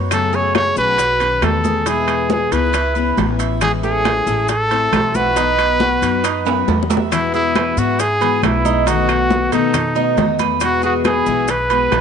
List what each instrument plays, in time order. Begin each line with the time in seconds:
Already playing: upright bass F#2, steel-string acoustic guitar F#3 B3 D#4 F#4, cuban tres C#5
0.11 steel-string acoustic guitar C#3 F#3 A3 C#4 G#4, trumpet A4, high bongo, high conga, high timbale, claves, maracas
0.33 cuban tres G#4, trumpet C#5, high bongo, high conga, maracas
0.55 trumpet C#5, high bongo, high conga, high timbale, low timbale, claves, maracas
0.76 upright bass B1, steel-string acoustic guitar F#3 A3 C#4 G#4, cuban tres F#4, trumpet B4, high bongo, high conga, maracas
0.98 muted steel-string acoustic guitar stroke, high bongo, high conga, high timbale, maracas
1.20 steel-string acoustic guitar D#3 C#4 F#4, cuban tres B4, high conga, high timbale, maracas
1.42 upright bass E2, steel-string acoustic guitar B2 D#3 C#4 F#4, trumpet A4, high bongo, low bongo, high conga, high timbale, low timbale, claves, maracas
1.64 cuban tres G#4, high bongo, high conga, maracas
1.86 steel-string acoustic guitar B2 G#3 B3 E4, cuban tres E4, trumpet G#4, high bongo, high conga, high timbale, maracas
2.08 high bongo, high conga, high timbale, claves, maracas
2.30 cuban tres G#4, trumpet G#4, high bongo, high conga, low timbale, maracas
2.52 upright bass C#2, steel-string acoustic guitar D#3 G#3 B3 E4, trumpet B4, high bongo, high timbale, maracas
2.73 cuban tres E4, muted steel-string acoustic guitar stroke, high bongo, high conga, high timbale, claves, maracas
2.95 steel-string acoustic guitar E3 B3 C#4 E4, cuban tres B4, high conga, maracas
3.17 upright bass A1, steel-string acoustic guitar E3 B3 C#4 E4, high bongo, low bongo, high conga, high timbale, low timbale, maracas
3.39 cuban tres E5, high bongo, high timbale, maracas
3.61 steel-string acoustic guitar E3 G#3 C#4 E4, trumpet G#4, high bongo, high conga, high timbale, claves, maracas
3.83 cuban tres A3, trumpet G#4, high bongo, high conga, maracas
4.05 high bongo, high conga, high timbale, low timbale, claves, maracas
4.26 upright bass A1, steel-string acoustic guitar G#3 C#4 E4, cuban tres A4, high bongo, high conga, maracas
4.48 trumpet A4, muted steel-string acoustic guitar stroke, high bongo, high conga, high timbale, maracas
4.71 steel-string acoustic guitar A3 C4 E4, cuban tres C5, high conga, high timbale, maracas
4.92 upright bass B1, steel-string acoustic guitar E3 A3 E4, high bongo, low bongo, high conga, high timbale, low timbale, claves, maracas
5.15 cuban tres F#4, trumpet B4, high bongo, high conga, maracas
5.36 steel-string acoustic guitar B2 F#3 B3 D#4 F#4, cuban tres D#4, high bongo, high conga, high timbale, maracas
5.59 high bongo, high conga, high timbale, claves, maracas
5.80 cuban tres F#4, high bongo, high conga, low timbale, maracas
6.02 upright bass F#2, steel-string acoustic guitar F#3 B3 D#4 F#4, high bongo, high timbale, maracas
6.24 cuban tres D#4, muted steel-string acoustic guitar stroke, high bongo, high conga, high timbale, claves, maracas
6.45 steel-string acoustic guitar F#3 B3 D#4 F#4, cuban tres B4, high conga, high timbale, maracas
6.68 upright bass E2, steel-string acoustic guitar F#3 B3 D#4 F#4, high bongo, high conga, low timbale, maracas
6.83 low bongo
6.90 cuban tres E5, high conga, low timbale, maracas
6.97 low bongo
7.11 steel-string acoustic guitar B2 E3 G#3 B3 F#4, trumpet E4, high bongo, high conga, high timbale, claves, maracas
7.34 trumpet E4, cuban tres G#4, high bongo, high conga, maracas
7.55 cuban tres B4, high bongo, high conga, high timbale, low timbale, claves, maracas
7.77 upright bass G#2, steel-string acoustic guitar E3 G#3 B3 F#4, trumpet F#4, cuban tres E5, high bongo, high conga, maracas
7.99 trumpet G#4, muted steel-string acoustic guitar stroke, high bongo, high conga, high timbale, maracas
8.21 steel-string acoustic guitar E3 G#3 B3 F#4, cuban tres B4, high conga, high timbale, maracas
8.42 upright bass B1, steel-string acoustic guitar E3 G#3 B3 F#4, trumpet E4, high bongo, low bongo, high conga, high timbale, low timbale, claves, maracas
8.65 cuban tres D#4, high bongo, high conga, maracas
8.86 steel-string acoustic guitar B2 D#3 A3 B3 F#4, cuban tres D#4, trumpet F#4, high bongo, high conga, high timbale, maracas
9.09 cuban tres F#4, high bongo, high conga, high timbale, claves, maracas
9.30 high bongo, high conga, low timbale, maracas
9.52 upright bass B2, steel-string acoustic guitar D#3 A3 B3 F#4, trumpet D#4, cuban tres A4, high bongo, high timbale, maracas
9.73 muted steel-string acoustic guitar stroke, high bongo, high conga, low conga, high timbale, claves, maracas
9.95 steel-string acoustic guitar D#3 A3 B3 F#4, cuban tres D#4, high conga, maracas
10.17 upright bass E2, steel-string acoustic guitar D#3 A3 B3 F#4, high bongo, low bongo, high conga, high timbale, low timbale, maracas
10.39 cuban tres B4, high bongo, high conga, high timbale, maracas
10.60 steel-string acoustic guitar B2 E3 G#3 B3 F#4, trumpet F#4, high bongo, high conga, high timbale, claves, maracas
10.82 trumpet F#4, cuban tres G#4, high bongo, high conga, maracas
11.04 trumpet G#4, cuban tres B4, high bongo, high conga, high timbale, low timbale, claves, maracas
11.26 upright bass B1, steel-string acoustic guitar E3 G#3 B3 F#4, cuban tres E5, high bongo, high conga, maracas
11.48 trumpet B4, muted steel-string acoustic guitar stroke, high bongo, high conga, high timbale, maracas
11.70 steel-string acoustic guitar E3 G#3 B3 F#4, cuban tres B4, high conga, high timbale, maracas
11.92 upright bass B1, steel-string acoustic guitar E3 G#3 F#4, high bongo, low bongo, high conga, high timbale, low timbale, claves, maracas